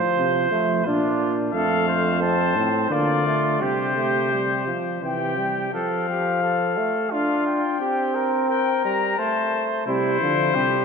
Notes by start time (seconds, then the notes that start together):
Already playing: F3 C5
0.18 C3
0.51 F3 A3
0.85 A#2 D4 F4
1.53 F2 A3 A4 F5
1.88 C5
2.22 C4 A5
2.56 A2 C4
2.90 D3 A#3 F4 D5
3.26 A3
3.60 C3 G3 G4 C5
3.97 A3
4.33 G3
4.67 F3
5.02 C3 E3 G4 G5
5.38 G3
5.74 F3 A4 F5
6.09 G4
6.43 A4
6.77 A3
7.12 D4 F4 F5
7.47 G5
7.81 C4 G4
8.15 A#4
8.49 A#4 G5
8.85 G3 A#5
9.19 A3 C5 A5
9.86 C3 G3 E4 C5
10.21 D3 F3
10.54 C3 G3 G4